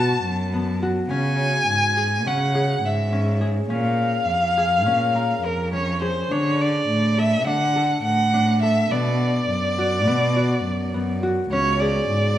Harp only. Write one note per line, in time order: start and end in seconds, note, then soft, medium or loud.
0.00 0.53 B3 medium
0.00 0.74 D4 medium
0.00 0.82 F#4 medium
0.00 0.42 A4 medium
0.53 3.64 B3 medium
0.82 3.26 F#4 medium
1.11 2.26 C#4 medium
1.97 2.54 G#4 medium
2.27 3.12 C#4 medium
2.55 3.40 G#4 medium
3.13 3.69 C#4 medium
3.41 4.57 G#4 medium
3.70 4.86 C#4 medium
4.58 6.01 G#4 medium
4.86 5.72 C#4 medium
5.15 7.24 A#4 medium
5.73 6.37 C#4 medium
6.01 7.24 G#4 medium
6.31 7.46 D4 medium
7.18 7.75 A4 medium
7.47 8.33 D4 medium
7.76 8.62 A4 medium
8.34 11.14 D4 medium
8.63 10.82 A4 medium
8.91 10.07 B3 medium
9.78 10.36 F#4 medium
10.07 10.94 B3 medium
10.36 11.22 F#4 medium
10.94 12.38 B3 medium
11.23 12.38 F#4 medium
11.52 12.38 C#4 medium
11.81 12.38 G#4 medium